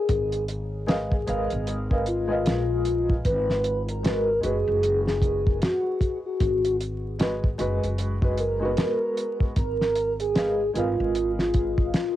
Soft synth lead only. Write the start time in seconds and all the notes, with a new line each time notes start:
Already playing: G#4
2.07 F4
3.25 B4
3.89 A#4
4.44 G#4
5.07 G#4
5.62 F#4
6.26 F#4
8.39 A#4
9.57 A#4
10.20 G#4
10.76 F4
11.39 F4
11.94 F4